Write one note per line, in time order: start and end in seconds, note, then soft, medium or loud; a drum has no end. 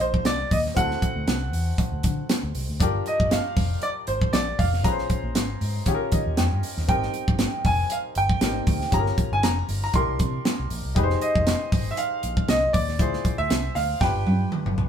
0.00 0.26 A#1 medium
0.00 0.72 A#3 medium
0.00 0.73 D4 medium
0.00 0.73 D#4 medium
0.00 0.73 G4 medium
0.00 0.24 C5 medium
0.14 kick medium
0.25 0.44 C2 medium
0.25 0.50 D5 loud
0.25 snare loud
0.25 closed hi-hat medium
0.51 0.69 D#2 medium
0.51 0.58 D#5 medium
0.51 kick loud
0.51 open hi-hat medium
0.66 snare soft
0.75 0.95 D2 loud
0.75 2.75 C4 medium
0.75 2.76 E4 medium
0.75 2.76 F#4 medium
0.75 2.77 A4 medium
0.75 2.26 F#5 loud
0.75 kick loud
0.75 closed hi-hat medium
0.91 snare soft
1.02 kick medium
1.02 closed hi-hat medium
1.16 1.24 D2 loud
1.28 1.53 C2 loud
1.28 snare loud
1.28 closed hi-hat medium
1.53 1.71 E2 medium
1.53 open hi-hat medium
1.78 kick loud
1.78 closed hi-hat medium
1.92 2.00 D2 medium
2.03 2.22 D3 medium
2.03 kick medium
2.03 closed hi-hat medium
2.29 snare loud
2.29 closed hi-hat medium
2.43 2.51 D2 medium
2.55 2.65 C2 medium
2.55 open hi-hat medium
2.69 2.82 D2 medium
2.80 2.98 G1 loud
2.80 4.80 D4 medium
2.80 4.81 F4 medium
2.80 4.81 G4 medium
2.80 4.81 A#4 medium
2.80 kick loud
2.80 closed hi-hat medium
3.06 3.33 D#5 medium
3.06 closed hi-hat medium
3.20 3.38 G1 medium
3.20 kick medium
3.31 3.79 F5 medium
3.31 snare loud
3.31 closed hi-hat medium
3.56 3.75 F1 medium
3.56 kick loud
3.56 snare soft
3.56 open hi-hat medium
3.82 3.88 D5 loud
3.82 closed hi-hat medium
4.07 4.26 G#1 medium
4.07 4.32 C5 medium
4.07 closed hi-hat medium
4.21 kick medium
4.33 4.51 A#1 loud
4.33 4.59 D5 medium
4.33 snare loud
4.33 closed hi-hat medium
4.59 4.85 F1 medium
4.59 4.85 F5 medium
4.59 kick loud
4.59 open hi-hat medium
4.73 snare soft
4.83 5.02 A#1 loud
4.83 5.84 C#4 medium
4.83 5.84 F4 medium
4.83 5.85 G#4 medium
4.83 4.91 B4 medium
4.83 6.33 A#5 loud
4.83 kick loud
4.83 closed hi-hat medium
4.91 5.88 C5 medium
4.98 snare soft
5.10 kick medium
5.10 closed hi-hat medium
5.24 5.36 A#1 loud
5.35 5.54 G#1 medium
5.35 snare loud
5.35 closed hi-hat medium
5.61 5.79 G#2 medium
5.61 open hi-hat medium
5.86 5.96 D#3 medium
5.86 6.86 C#4 medium
5.86 6.87 F4 medium
5.86 6.87 G4 medium
5.86 5.94 G#4 medium
5.86 kick medium
5.86 closed hi-hat medium
5.95 6.89 A#4 medium
6.12 6.22 D#3 loud
6.12 6.36 D#5 medium
6.12 kick loud
6.12 closed hi-hat medium
6.26 6.38 D#2 medium
6.37 6.48 F2 medium
6.37 6.85 G5 medium
6.37 snare loud
6.37 closed hi-hat medium
6.52 6.60 G2 medium
6.63 open hi-hat medium
6.77 6.85 D#2 medium
6.77 snare soft
6.88 7.06 G#1 loud
6.88 8.38 C4 medium
6.88 8.38 D#4 medium
6.88 8.39 G4 medium
6.88 8.39 A#4 medium
6.88 7.68 G5 medium
6.88 kick loud
6.88 closed hi-hat medium
7.02 snare soft
7.14 closed hi-hat medium
7.28 7.46 G#1 loud
7.28 kick loud
7.39 snare loud
7.39 closed hi-hat medium
7.65 7.83 F1 medium
7.65 7.92 G#5 medium
7.65 kick loud
7.65 open hi-hat medium
7.90 7.97 F5 medium
7.90 closed hi-hat medium
8.15 8.34 G1 medium
8.15 8.95 G5 loud
8.15 closed hi-hat medium
8.30 kick medium
8.41 8.59 G#1 medium
8.41 8.48 A#3 soft
8.41 8.93 D#4 soft
8.41 8.91 G4 soft
8.41 8.93 A#4 medium
8.41 snare loud
8.41 closed hi-hat medium
8.47 8.95 C4 medium
8.67 8.85 D2 medium
8.67 kick loud
8.67 open hi-hat medium
8.81 snare soft
8.91 9.10 G1 loud
8.91 9.92 C#4 medium
8.91 9.92 F4 medium
8.91 9.92 G4 medium
8.91 8.99 G#4 medium
8.91 9.30 A#5 loud
8.91 kick loud
8.91 closed hi-hat medium
9.00 9.94 A#4 medium
9.06 snare soft
9.18 kick medium
9.18 closed hi-hat medium
9.32 9.44 G1 medium
9.32 9.44 G#5 loud
9.43 9.61 F1 loud
9.43 9.80 A#5 loud
9.43 snare loud
9.43 closed hi-hat medium
9.69 9.86 G1 medium
9.69 open hi-hat medium
9.84 9.95 A#5 medium
9.93 10.04 C2 medium
9.93 10.93 D4 medium
9.93 10.94 E4 medium
9.93 10.94 G4 medium
9.93 10.95 A#4 medium
9.93 10.67 C6 medium
9.93 kick medium
9.93 closed hi-hat medium
10.08 10.16 C2 medium
10.19 10.38 C3 medium
10.19 kick medium
10.19 closed hi-hat medium
10.45 snare loud
10.45 closed hi-hat medium
10.60 10.67 C2 medium
10.70 10.80 A#1 medium
10.70 open hi-hat medium
10.85 10.93 C2 medium
10.95 11.14 F1 loud
10.95 12.95 D#4 medium
10.95 12.95 G4 medium
10.95 12.96 G#4 medium
10.95 11.03 B4 medium
10.95 kick loud
10.95 closed hi-hat medium
11.03 12.99 C5 medium
11.10 snare soft
11.22 11.88 D#5 medium
11.22 closed hi-hat medium
11.35 11.53 F1 medium
11.35 kick loud
11.47 snare loud
11.47 closed hi-hat medium
11.72 11.90 G#1 medium
11.72 kick loud
11.72 open hi-hat medium
11.91 11.98 E5 medium
11.97 12.45 F5 medium
11.97 closed hi-hat medium
12.23 12.41 A#1 loud
12.23 closed hi-hat medium
12.37 kick medium
12.48 12.66 C2 medium
12.48 12.75 D#5 loud
12.48 snare loud
12.48 closed hi-hat medium
12.73 13.00 D#2 medium
12.73 13.34 D5 medium
12.73 kick loud
12.73 open hi-hat medium
12.88 snare soft
12.99 13.17 D2 loud
12.99 13.99 E4 medium
12.99 13.99 F4 medium
12.99 14.00 G#4 medium
12.99 14.00 C5 medium
12.99 kick loud
12.99 closed hi-hat medium
13.13 snare soft
13.25 kick loud
13.25 closed hi-hat medium
13.38 13.47 D2 loud
13.38 13.73 E5 loud
13.50 13.68 C2 loud
13.50 snare loud
13.50 closed hi-hat medium
13.75 13.93 D2 medium
13.75 14.02 F5 loud
13.75 snare soft
13.75 open hi-hat medium
14.00 14.11 G1 medium
14.00 14.89 D4 medium
14.00 14.89 F4 medium
14.00 14.89 G4 medium
14.00 14.89 B4 medium
14.00 14.48 G5 medium
14.00 kick loud
14.00 snare medium
14.15 14.23 G1 medium
14.27 14.45 G2 medium
14.27 high tom medium
14.52 mid tom medium
14.66 14.74 G1 medium
14.66 mid tom medium
14.78 14.87 C2 medium
14.78 floor tom loud